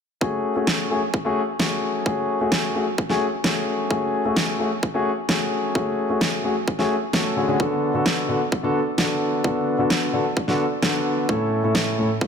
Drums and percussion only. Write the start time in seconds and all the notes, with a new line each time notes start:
0.21 kick
0.67 kick, snare
1.14 kick
1.60 kick, snare
2.06 kick
2.52 kick, snare
2.98 kick
3.10 snare
3.44 kick, snare
3.91 kick
4.36 kick, snare
4.83 kick
5.29 kick, snare
5.75 kick
6.21 kick, snare
6.68 kick
6.79 snare
7.13 kick, snare
7.60 kick
8.06 kick, snare
8.52 kick
8.98 kick, snare
9.44 kick
9.90 kick, snare
10.37 kick
10.48 snare
10.83 kick, snare
11.29 kick
11.75 kick, snare
12.21 kick